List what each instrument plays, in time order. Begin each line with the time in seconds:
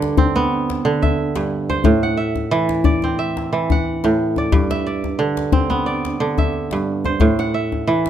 Already playing: kora G2 D3 D5 E5
0.02 djembe slap
0.17 kora C4, djembe bass
0.35 kora B3, djembe tone
0.70 djembe slap
0.85 kora D3
1.02 kora E5, djembe tone, djembe bass
1.18 djembe slap
1.36 kora G2, djembe slap
1.70 kora C5, djembe tone
1.84 kora A2, djembe bass
2.03 kora F#5
2.17 kora E5, djembe slap
2.36 djembe tone
2.51 kora E3
2.69 djembe slap
2.84 kora D5, djembe bass
3.02 kora C4, djembe tone
3.19 kora E5
3.37 djembe slap
3.52 kora E3, djembe slap
3.70 kora F#5, djembe tone, djembe bass
4.04 kora A2, djembe slap
4.36 kora D5, djembe slap, djembe tone
4.52 kora G2, djembe slap, djembe bass
4.71 kora E5, djembe slap
4.86 kora D5
5.04 djembe tone
5.19 kora D3
5.37 djembe slap
5.52 kora C4, djembe bass
5.70 kora B3, djembe tone
5.86 kora D5
6.05 djembe slap
6.20 kora D3
6.38 kora E5, djembe tone, djembe bass
6.53 djembe slap
6.71 kora G2, djembe slap
7.05 kora C5, djembe tone
7.20 kora A2, djembe slap, djembe bass
7.39 kora F#5, djembe slap
7.54 kora E5
7.72 djembe tone
7.87 kora E3
8.06 djembe slap